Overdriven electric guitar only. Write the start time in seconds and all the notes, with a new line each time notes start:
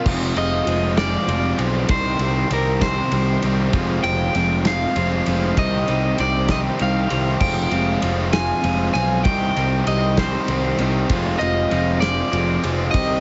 0.06 F3 G#3 C4 F4
0.36 F3 G#3 C4 F4
0.67 F3 G#3 C4 F4
0.97 F3 G#3 C4 F4
1.27 F3 G#3 C4 F4
1.57 F3 G#3 C4 F4
1.89 C3 D#3 G3 C4 G4
2.20 C3 D#3 G3 C4 G4
2.50 C3 D#3 G3 C4 G4
2.80 C3 D#3 G3 C4 G4
3.11 C3 D#3 G3 C4 G4
3.42 C3 D#3 G3 C4 G4
3.73 F3 G#3 C4 F4
4.03 F3 G#3 C4 F4
4.35 F3 G#3 C4 F4
4.65 F3 G#3 C4 F4
4.96 F3 G#3 C4 F4
5.27 F3 G#3 C4 F4
5.57 C3 D#3 G3 C4 G4
5.87 C3 D#3 G3 C4 G4
6.18 C3 D#3 G3 C4 G4
6.49 C3 D#3 G3 C4 G4
6.80 C3 D#3 G3 C4 G4
7.10 C3 D#3 G3 C4 G4
7.40 F3 G#3 C4 F4
7.71 F3 G#3 C4 F4
8.02 F3 G#3 C4 F4
8.33 F3 G#3 C4 F4
8.63 F3 G#3 C4 F4
8.95 F3 G#3 C4 F4
9.25 C3 D#3 G3 C4 G4
9.56 C3 D#3 G3 C4 G4
9.86 C3 D#3 G3 C4 G4
10.18 C3 D#3 G3 C4 G4
10.49 C3 D#3 G3 C4 G4
10.79 C3 D#3 G3 C4 G4
11.11 F3 G#3 C4 F4
11.40 F3 G#3 C4 F4
11.71 F3 G#3 C4 F4
12.02 F3 G#3 C4 F4
12.31 F3 G#3 C4 F4
12.63 F3 G#3 C4 F4
12.93 C3 D#3 G3 C4 G4